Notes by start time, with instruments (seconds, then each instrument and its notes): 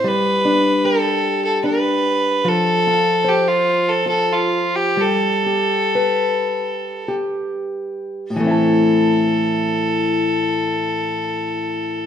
Already playing: steel-string acoustic guitar C4 E4
0.04 steel-string acoustic guitar G3, fiddle B4
0.45 steel-string acoustic guitar D4
0.85 steel-string acoustic guitar G4, fiddle A4
1.45 fiddle A4
1.64 steel-string acoustic guitar D4, fiddle B4
2.44 steel-string acoustic guitar F3, fiddle A4
2.87 steel-string acoustic guitar F4
3.24 steel-string acoustic guitar C5
3.29 fiddle G4
3.48 fiddle F4
3.88 fiddle A4
4.06 steel-string acoustic guitar F4, fiddle A4
4.32 fiddle F4
4.76 fiddle G4
4.97 steel-string acoustic guitar G3, fiddle A4
5.46 steel-string acoustic guitar G4
5.95 steel-string acoustic guitar B4
7.08 steel-string acoustic guitar G4
8.30 steel-string acoustic guitar A2
8.36 steel-string acoustic guitar E3, fiddle A4
8.40 steel-string acoustic guitar A3
8.44 steel-string acoustic guitar C4 E4
8.51 steel-string acoustic guitar A4